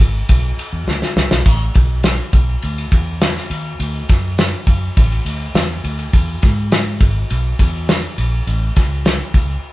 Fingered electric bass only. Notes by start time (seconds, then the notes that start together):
0.00 G#1
0.29 B1
0.57 muted fingered electric bass stroke
0.73 E2
0.87 D2
1.16 C#2
1.31 B1
1.46 A1
1.76 B1
2.33 B1
2.63 D2
2.92 E2
3.50 D#2
3.80 D2
4.10 F#2
4.67 F#2
4.97 A1
5.25 D2
5.54 E2
5.84 D2
6.13 E2
6.43 G#2
7.01 G#1
7.31 B1
7.59 E2
8.18 A#1
8.47 A1
8.77 C#2
9.34 C#2